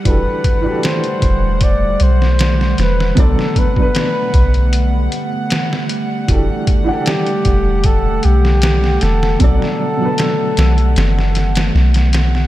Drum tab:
HH |x-x-xxx-x-x-x-x-|x-x-x-xxx-x-x-x-|x-x-xxx-x-x-x-x-|x---x-xxx-xx-xx-|
SD |----o------ooooo|-o--o-------oo--|----o------ooooo|-o--o-o-oooooooo|
BD |o-o---o-o-------|o-oo--o---------|o-o---o-o-------|o---------------|